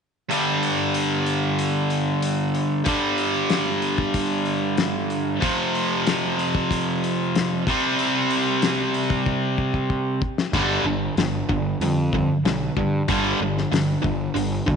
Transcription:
0.30 G2 D3 G3, open hi-hat
0.63 open hi-hat
0.94 open hi-hat
1.26 open hi-hat
1.59 open hi-hat
1.90 open hi-hat
2.22 open hi-hat
2.55 open hi-hat
2.84 G2 D3 G3, kick, open hi-hat
3.18 open hi-hat
3.50 snare, open hi-hat
3.82 open hi-hat
3.98 kick
4.14 kick, open hi-hat
4.45 open hi-hat
4.78 snare, open hi-hat
5.10 open hi-hat
5.40 F2 C3 F3, kick, open hi-hat
5.75 open hi-hat
6.07 snare, open hi-hat
6.39 open hi-hat
6.55 kick
6.71 kick, open hi-hat
7.04 open hi-hat
7.36 snare, open hi-hat
7.67 C3 G3 C4, kick, open hi-hat
7.99 open hi-hat
8.31 open hi-hat
8.62 snare, open hi-hat
8.94 open hi-hat
9.10 kick
9.26 kick
9.58 kick
9.74 kick
9.90 kick
10.22 kick
10.38 snare
10.53 G1 G2 D3 G3, kick, crash
10.84 G1 G2 D3
11.17 G1 G2 D3, snare, open hi-hat
11.49 G1 G2 D3, kick
11.80 F2 G2 D3, open hi-hat
12.13 G2 D3, kick
12.45 B1 G2 D3, snare, open hi-hat
12.77 G2 D3, kick
13.08 G1 G2 D3 G3, kick, open hi-hat
13.41 G1 G2 D3
13.58 snare
13.72 G1 G2 D3, snare, open hi-hat
14.02 G1 G2 D3, kick
14.34 G1 G2 D3, open hi-hat
14.66 D2 G2 D3, kick

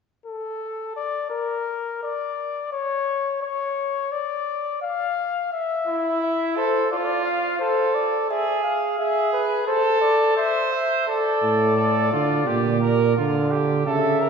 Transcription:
0.26 A4
0.97 D5
1.30 A#4
2.04 D5
2.73 C#5
3.42 C#5
4.12 D5
4.82 F5
5.53 E5
5.87 E4
6.22 E5
6.57 A4 C5
6.91 F4 D5
6.98 C5
7.05 D5
7.26 F5
7.59 A4 C5
7.95 D5
8.30 G#4 E5
8.63 F5
8.98 G#4 E5
9.33 B4
9.67 A4 C5
10.01 D5
10.37 C5 E5
10.73 E5
11.08 A4 D5
11.44 A2
11.76 A4
12.12 D3 F4
12.47 A#2 G4
12.81 A#4
13.16 D3 F4
13.51 G4
13.86 C#3 A4 E5
14.20 A#4

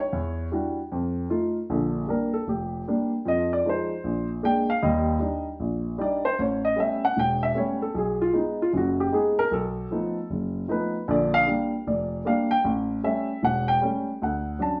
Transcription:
0.00 C#5
0.13 E2
0.52 G3 D4 E4 F#4
0.92 F2
1.30 A3 D#4 F4
1.70 A#1 D3
2.07 G3 A#3 D4 A#4
2.34 A4
2.47 F1 G4
2.88 G3 A#3 D4
3.25 F2 F3 D#5
3.53 D5
3.65 F3 G#3 D#4
3.69 C5
4.04 A#1
4.43 G#3 A#3 D4 G5
4.70 F5
4.82 D#2 G3 D#5
5.20 G3 D4 D#4
5.60 A#1
5.98 G3 D4 D#4 D5
6.25 C5
6.39 A1 C#5
6.65 D#5
6.76 G3 A3 B3 C#4 E5
7.05 F#5
7.17 E1 G5
7.43 E5
7.55 G3 A3 B3 C#4 C#5
7.82 A4
7.94 B1 G#4
8.22 F4
8.33 G#3 B3 D#4
8.38 D#4
8.62 F4
8.73 F#1 F#2 F4
8.77 F#4
9.00 G4
9.12 G#3 B3 D#4 G#4
9.39 A#4
9.51 B1 A4
9.91 F3 A3 B3 D#4
10.30 F#1
10.68 F3 A3 B3 D#4 B4
11.08 A#1 D3 D5
11.34 F5
11.47 G3 A#3 D4
11.87 F1 D5
12.25 G3 A#3 D4 F5
12.51 G5
12.64 A1
13.04 G3 A3 C#4 E5
13.43 E1 F#5
13.68 G5
13.82 G3 A3 C#4
14.22 D2 F#5
14.59 F#3 C#4 D4 A5

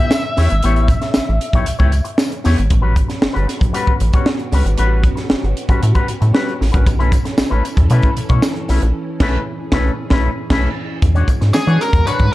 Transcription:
Already playing: E5
0.00 B3 E4 G4 E5
0.11 muted clean electric guitar stroke, snare, tambourine
0.36 E2 B3 E4 G4 C#5, snare, open hi-hat, tambourine
0.50 G#1, muted clean electric guitar stroke, closed hi-hat
0.63 A1 B3 E4 G4 C#5, closed hi-hat, tambourine
0.76 closed hi-hat
0.88 kick, closed hi-hat, tambourine
1.01 muted clean electric guitar stroke, snare, closed hi-hat
1.14 A1, muted clean electric guitar stroke, snare, tambourine
1.28 A1, muted clean electric guitar stroke
1.41 closed hi-hat
1.53 B1 B3 E4 G4 C#5, kick, closed hi-hat
1.66 C#2, muted clean electric guitar stroke, closed hi-hat, tambourine
1.79 C#2 B3 E4 G4 C#5, kick, closed hi-hat
1.92 muted clean electric guitar stroke, closed hi-hat, tambourine
2.05 muted clean electric guitar stroke, closed hi-hat
2.18 muted clean electric guitar stroke, snare, tambourine
2.31 muted clean electric guitar stroke, closed hi-hat
2.44 E2 B3 E4 G4 C#5, snare, open hi-hat, tambourine
2.58 G#1, muted clean electric guitar stroke, closed hi-hat
2.70 A1 B3 C#4 F#4 G4, muted clean electric guitar stroke, kick, closed hi-hat
2.82 G3 C#4 F#4 B4
2.95 muted clean electric guitar stroke, kick, closed hi-hat
3.08 muted clean electric guitar stroke, snare, closed hi-hat
3.21 G1, muted clean electric guitar stroke, snare
3.33 G1 G3 C#4 F#4 B4, closed hi-hat
3.47 muted clean electric guitar stroke, snare, closed hi-hat
3.59 B1, muted clean electric guitar stroke, kick, closed hi-hat
3.73 G3 C#4 F#4 B4, closed hi-hat
3.87 A1, kick
4.00 A1, muted clean electric guitar stroke, closed hi-hat
4.13 G3 C#4 F#4 C#5, kick, closed hi-hat
4.26 muted clean electric guitar stroke, snare
4.39 closed hi-hat
4.52 C#2 G3 C#4 F#4 B4, snare, open hi-hat
4.65 G#1, muted clean electric guitar stroke, closed hi-hat
4.77 A1 G3 C#4 F#4 B4, closed hi-hat
5.04 kick, closed hi-hat
5.16 muted clean electric guitar stroke, snare, closed hi-hat
5.29 G1, muted clean electric guitar stroke, snare
5.42 G1, muted clean electric guitar stroke, closed hi-hat
5.57 closed hi-hat
5.69 B1 G3 C#4 F#4 B4, kick, closed hi-hat
5.82 A2, muted clean electric guitar stroke, closed hi-hat
5.95 G3 C#4 F#4 B4, kick, closed hi-hat
6.08 A2, muted clean electric guitar stroke, closed hi-hat
6.21 A2, muted clean electric guitar stroke, closed hi-hat
6.33 G3 C#4 F#4 B4, snare
6.49 closed hi-hat
6.60 A1, muted clean electric guitar stroke, snare, open hi-hat
6.72 A#1 G3 C#4 F#4 B4, kick, closed hi-hat
6.86 B1 E3 A4, muted clean electric guitar stroke, kick, closed hi-hat, tambourine
6.99 A3 C#4 E4 B4, closed hi-hat
7.12 muted clean electric guitar stroke, kick, closed hi-hat, tambourine
7.25 muted clean electric guitar stroke, snare, closed hi-hat
7.37 A1, muted clean electric guitar stroke, snare, tambourine
7.50 A1 A3 C#4 E4 B4
7.64 muted clean electric guitar stroke, closed hi-hat, tambourine
7.77 E2, muted clean electric guitar stroke, kick, closed hi-hat
7.90 B2 A3 C#4 E4 B4, closed hi-hat, tambourine
8.02 kick, closed hi-hat
8.16 B2, muted clean electric guitar stroke, closed hi-hat, tambourine
8.29 B2 A3 C#4 E4 C#5, kick, closed hi-hat
8.42 muted clean electric guitar stroke, snare, tambourine
8.56 closed hi-hat
8.68 B1 A3 C#4 E4 B4, snare, open hi-hat, tambourine
8.82 A#1, muted clean electric guitar stroke, closed hi-hat
8.96 G#4
9.20 B1 A3 C#4 E4 B4, kick, snare, crash
9.72 B1 A3 C#4 E4 B4, kick, snare
10.10 B1 A3 C#4 E4 B4, kick, snare
10.50 B1 A3 C#4 E4 B4, kick, snare, crash
11.02 E2 D3 G#3 C#4 F#4, muted clean electric guitar stroke, kick, closed hi-hat, tambourine
11.15 G#3 D4 F#4 C#5, closed hi-hat
11.28 muted clean electric guitar stroke, kick, closed hi-hat, tambourine
11.41 G#2, muted clean electric guitar stroke, snare, closed hi-hat
11.53 E3 G#4, muted clean electric guitar stroke, snare, tambourine
11.67 E3 G#3 D4 F#4 C#5, closed hi-hat
11.79 A#4, muted clean electric guitar stroke, snare, closed hi-hat, tambourine
11.93 E2, muted clean electric guitar stroke, kick, closed hi-hat
12.06 G#2 G#3 D4 F#4 B4 C#5, closed hi-hat, tambourine
12.19 G#2, kick, closed hi-hat

